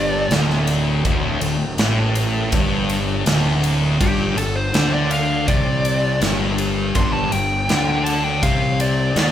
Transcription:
Already playing: fingered electric bass G1, distorted electric guitar G2, lead electric guitar D5
0.31 fingered electric bass D1, distorted electric guitar D2, snare, ride
0.50 snare
0.67 ride
1.04 fingered electric bass D1, distorted electric guitar D2, kick, ride
1.41 fingered electric bass D1, distorted electric guitar D2, ride
1.78 fingered electric bass A1, distorted electric guitar A2, snare, ride
2.15 ride
2.52 fingered electric bass G1, distorted electric guitar G2, kick, ride
2.89 ride
3.26 fingered electric bass D1, distorted electric guitar D2, snare, ride
3.64 ride
4.00 fingered electric bass G1, distorted electric guitar G2, lead electric guitar G4, kick, ride
4.37 fingered electric bass G1, distorted electric guitar G2, lead electric guitar A4, ride
4.56 lead electric guitar C5
4.73 fingered electric bass D2, distorted electric guitar D3, snare, ride
4.93 lead electric guitar D5
5.11 lead electric guitar F5, ride
5.48 fingered electric bass C2, distorted electric guitar C3, lead electric guitar D5, kick, ride
5.85 ride
6.21 fingered electric bass G1, distorted electric guitar G2, snare, ride
6.58 ride
6.95 fingered electric bass G1, distorted electric guitar G2, lead electric guitar C6, kick, ride
7.13 lead electric guitar A5
7.31 fingered electric bass G1, distorted electric guitar G2, lead electric guitar G5, ride
7.68 fingered electric bass D2, distorted electric guitar D3, snare, ride
8.04 lead electric guitar A5, ride
8.24 lead electric guitar G5
8.43 fingered electric bass C2, distorted electric guitar C3, lead electric guitar F5, kick, ride
8.80 lead electric guitar D5, ride
9.15 fingered electric bass D#2, distorted electric guitar D#3, snare, ride

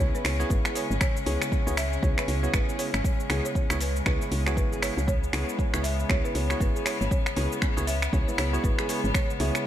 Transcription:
Already playing: string section C#3 G#3 C#4
0.00 fm bass C#2, tine electric piano B3 E4 G#4 C#5, nylon-string guitar C#4, marimba C#5, shaker
0.14 nylon-string guitar E4, marimba B4, shaker
0.25 fm bass C#2, marimba C#5, finger snap, open hi-hat, shaker
0.40 tine electric piano B3 E4 G#4 C#5, nylon-string guitar F#4, shaker
0.50 fm bass G#1, marimba B4, kick, shaker
0.65 nylon-string guitar G#4, finger snap, shaker
0.75 tine electric piano B3 E4 G#4 C#5, marimba C#5, open hi-hat, shaker
0.91 fm bass G#1, nylon-string guitar C#4, shaker
1.01 nylon-string guitar C#4, marimba C#5, finger snap, kick, shaker
1.17 shaker
1.26 fm bass C#2, tine electric piano B3 E4 G#4 C#5, nylon-string guitar G#4, open hi-hat, shaker
1.42 finger snap, shaker
1.52 nylon-string guitar C#4, kick, shaker
1.67 fm bass C#2, tine electric piano B3 E4 G#4 C#5, shaker
1.77 nylon-string guitar C#4, marimba E5, finger snap, open hi-hat, shaker
1.93 shaker
2.03 fm bass C#2, tine electric piano B3 E4 G#4 C#5, nylon-string guitar C#4, marimba C#5, kick, shaker
2.18 nylon-string guitar E4, marimba B4, finger snap, shaker
2.28 fm bass C#2, marimba C#5, open hi-hat, shaker
2.43 tine electric piano B3 E4 G#4 C#5, nylon-string guitar F#4, shaker
2.54 fm bass G#1, marimba B4, finger snap, kick, shaker
2.69 nylon-string guitar G#4, shaker
2.79 tine electric piano B3 E4 G#4 C#5, marimba C#5, open hi-hat, shaker
2.94 fm bass G#1, nylon-string guitar C#4, finger snap, shaker
3.04 nylon-string guitar C#4, kick, shaker
3.20 shaker
3.30 fm bass C#2, tine electric piano B3 E4 G#4 C#5, nylon-string guitar G#4, finger snap, open hi-hat, shaker
3.45 marimba C#5, shaker
3.55 nylon-string guitar C#4, kick, shaker
3.70 fm bass C#2, tine electric piano B3 E4 G#4 C#5, finger snap, shaker
3.81 nylon-string guitar C#4, marimba B4, open hi-hat, shaker
3.96 shaker
4.06 fm bass C#2, tine electric piano B3 E4 G#4 C#5, nylon-string guitar C#4, marimba B4, finger snap, kick, shaker
4.21 nylon-string guitar E4, shaker
4.32 fm bass C#2, open hi-hat, shaker
4.46 tine electric piano B3 E4 G#4 C#5, nylon-string guitar F#4, finger snap, shaker
4.57 fm bass G#1, marimba B4, kick, shaker
4.72 nylon-string guitar G#4, shaker
4.82 tine electric piano B3 E4 G#4 C#5, marimba C#5, finger snap, open hi-hat, shaker
4.97 fm bass C#2, nylon-string guitar C#4, shaker
5.07 string section B3, nylon-string guitar C#4, marimba C#5, kick, shaker
5.24 shaker
5.33 fm bass C#2, tine electric piano B3 E4 G#4 C#5, nylon-string guitar G#4, finger snap, open hi-hat, shaker
5.49 shaker
5.59 nylon-string guitar C#4, kick, shaker
5.74 fm bass C#2, tine electric piano B3 E4 G#4 C#5, finger snap, shaker
5.84 nylon-string guitar C#4, marimba E5, open hi-hat, shaker
6.00 shaker
6.09 fm bass C#2, tine electric piano B3 E4 G#4 C#5, nylon-string guitar C#4, marimba C#5, finger snap, kick, shaker
6.24 nylon-string guitar E4, marimba B4, shaker
6.35 fm bass C#2, marimba C#5, open hi-hat, shaker
6.50 tine electric piano B3 E4 G#4 C#5, nylon-string guitar F#4, finger snap, shaker
6.60 fm bass G#1, marimba B4, kick, shaker
6.75 nylon-string guitar G#4, shaker
6.86 tine electric piano B3 E4 G#4 C#5, marimba C#5, finger snap, open hi-hat, shaker
7.01 fm bass G#1, nylon-string guitar C#4, shaker
7.11 nylon-string guitar C#4, marimba C#5, kick, shaker
7.26 finger snap, shaker
7.37 fm bass C#2, tine electric piano B3 E4 G#4 C#5, nylon-string guitar G#4, open hi-hat, shaker
7.52 shaker
7.62 nylon-string guitar C#4, finger snap, kick, shaker
7.77 fm bass C#2, tine electric piano B3 E4 G#4 C#5, shaker
7.87 nylon-string guitar C#4, marimba E5, open hi-hat, shaker
8.02 finger snap, shaker
8.13 fm bass C#2, tine electric piano B3 E4 G#4 C#5, nylon-string guitar C#4, marimba C#5, kick, shaker
8.28 nylon-string guitar E4, marimba B4, shaker
8.38 fm bass C#2, marimba C#5, finger snap, open hi-hat, shaker
8.53 tine electric piano B3 E4 G#4 C#5, nylon-string guitar F#4, shaker
8.64 fm bass G#1, marimba B4, kick, shaker
8.79 nylon-string guitar G#4, finger snap, shaker
8.89 tine electric piano B3 E4 G#4 C#5, open hi-hat, shaker
9.04 fm bass G#1, nylon-string guitar C#4, shaker
9.14 nylon-string guitar C#4, marimba C#5, finger snap, kick, shaker
9.30 shaker
9.40 fm bass C#2, tine electric piano B3 E4 G#4 C#5, nylon-string guitar G#4, marimba E5, open hi-hat, shaker
9.55 finger snap, shaker

